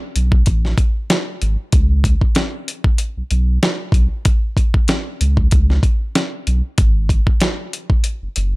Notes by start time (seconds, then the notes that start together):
0.16 B1, closed hi-hat
0.32 kick
0.46 A1, kick, closed hi-hat
0.65 snare
0.78 kick, closed hi-hat
1.10 snare, closed hi-hat
1.42 G#1, closed hi-hat
1.72 C#2, kick, closed hi-hat
2.04 kick, closed hi-hat
2.21 kick
2.35 snare, closed hi-hat
2.68 closed hi-hat
2.84 kick
2.98 closed hi-hat
3.17 B1
3.31 B1, closed hi-hat
3.63 snare, closed hi-hat
3.92 B1, kick, closed hi-hat
4.25 kick, closed hi-hat
4.57 kick, closed hi-hat
4.74 kick
4.88 snare, closed hi-hat
5.21 C#2, closed hi-hat
5.37 kick
5.51 C#2, kick, closed hi-hat
5.70 snare
5.83 kick, closed hi-hat
6.15 snare, closed hi-hat
6.47 B1, closed hi-hat
6.78 G#1, kick, closed hi-hat
7.09 kick, closed hi-hat
7.27 kick
7.40 snare, closed hi-hat
7.73 closed hi-hat
7.90 kick
8.04 closed hi-hat
8.22 F#1
8.36 F#1, closed hi-hat